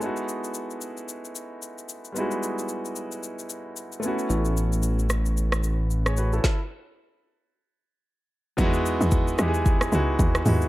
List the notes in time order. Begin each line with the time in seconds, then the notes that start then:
Already playing: G#3 A4
0.00 B3 D#4 E4, shaker
0.06 F#4
0.17 shaker
0.29 shaker
0.44 shaker
0.54 shaker
0.70 shaker
0.81 shaker
0.97 shaker
1.09 shaker
1.25 shaker
1.35 shaker
1.62 shaker
1.78 shaker
1.89 shaker
2.05 shaker
2.12 G3 B3 D#4, shaker
2.18 G#3 E4 F#4
2.31 shaker
2.43 shaker
2.59 shaker
2.69 shaker
2.85 shaker
2.96 shaker
3.12 shaker
3.23 shaker
3.39 shaker
3.49 shaker
3.76 shaker
3.92 shaker
4.00 A3 B3 C#4, shaker
4.06 E4 F#4
4.19 shaker
4.30 A1, shaker
4.45 shaker
4.57 shaker
4.73 shaker
4.83 shaker
4.99 shaker
5.10 cross-stick, shaker
5.26 shaker
5.37 shaker
5.52 cross-stick, shaker
5.63 shaker
5.91 shaker
6.06 G#4 C#5, cross-stick, shaker
6.17 F#4 B4, shaker
6.33 E4 A4, shaker
6.44 kick, snare
8.57 E2 F#3 B3 D#4 E4 F#4, kick, shaker
8.63 G#3
8.74 shaker
8.86 shaker
9.01 E2, shaker
9.11 kick, shaker
9.28 shaker
9.37 E2 G#3 B3 D#4 E4 G4, cross-stick, shaker
9.48 G#4
9.54 shaker
9.66 kick, shaker
9.81 cross-stick, shaker
9.91 C#2 G#3 B3 D#4 E4 F#4, shaker
10.19 D#2, kick, shaker
10.35 cross-stick, shaker
10.44 D#2 G#3 B3 D#4 E4 F#4, mid tom, open hi-hat, shaker
10.61 shaker